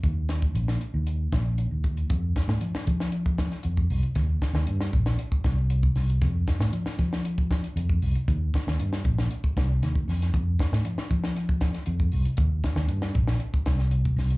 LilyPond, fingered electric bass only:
\new Staff \with { instrumentName = "Fingered electric bass" } { \clef bass \time 4/4 \key f \mixolydian \tempo 4 = 117 ees,4 bes,,8 r16 ees,8. bes,,8. ees,8. | f,8 r16 a,16 f16 r16 f4. f,8 c,16 r16 | ees,8 r16 ees,16 g,8 bes,,8 r8 c,4 c,8 | f,8 r16 a,16 f16 r16 f4. f,8 c,16 r16 |
ees,8 r16 ees,16 g,8 bes,,8 r8 c,8 ees,8 f,8 | f,8 r16 a,16 f16 r16 f4. f,8 c,16 r16 | ees,8 r16 ees,16 g,8 bes,,8 r8 c,4 c,8 | }